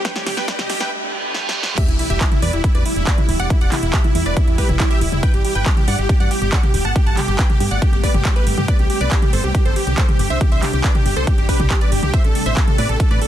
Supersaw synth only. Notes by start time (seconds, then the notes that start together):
0.05 B4 G5
0.16 G4
0.26 G4
0.37 B4 G5
0.48 B4
0.59 G4
0.70 G4
0.80 B4 G5
1.78 G4 E5
1.88 E4
1.99 E4
2.10 G4 E5
2.21 E4
2.31 E4
2.42 B4 D5
2.53 E4
2.64 E4
2.75 B4 D5
2.85 E4
2.96 E4
3.07 B4 D5
3.18 E4
3.29 E4
3.39 D5 F#5
3.50 E4
3.61 D5 F#5
3.72 E4
3.83 E4
3.93 G4
4.04 E4
4.15 E4
4.26 B4 D5
4.37 E4
4.47 E4
4.58 G4 B4
4.69 E4
4.80 E4
4.91 G4 E5
5.01 E4
5.12 E4
5.23 B4 G5
5.34 G4
5.45 G4
5.55 B4 G5
5.66 G4
5.77 G4
5.88 D5 F#5
5.98 G4
6.09 G4
6.20 D5 F#5
6.31 G4
6.42 G4
6.52 D5 F#5
6.63 G4
6.74 G4
6.85 F#5 A5
6.96 G4
7.06 F#5 A5
7.17 G4
7.28 G4
7.39 B4 G5
7.50 G4
7.60 G4
7.71 D5 F#5
7.82 G4
7.93 G4
8.03 B4 D5
8.14 G4
8.25 G4
8.36 G4 B4
8.47 G4
8.58 G4
8.68 B4 D5
8.79 G4
8.90 G4
9.01 B4 D5
9.11 G4
9.22 G4
9.33 A4 C5
9.44 G4
9.55 G4
9.65 A4 C5
9.76 G4
9.87 G4
9.98 A4 C5
10.09 G4
10.19 G4
10.30 C5 E5
10.41 G4
10.52 C5 E5
10.63 G4
10.73 G4
10.84 B4 D5
10.95 G4
11.06 G4
11.16 A4 C5
11.27 G4
11.38 G4
11.49 G4 B4
11.60 G4
11.70 G4
11.81 B4 D5
11.92 G4
12.03 G4
12.14 C5 E5
12.24 A4
12.35 A4
12.46 C5 E5
12.57 A4
12.68 A4
12.78 B4 D5
12.89 A4
13.00 A4
13.11 B4 D5
13.22 A4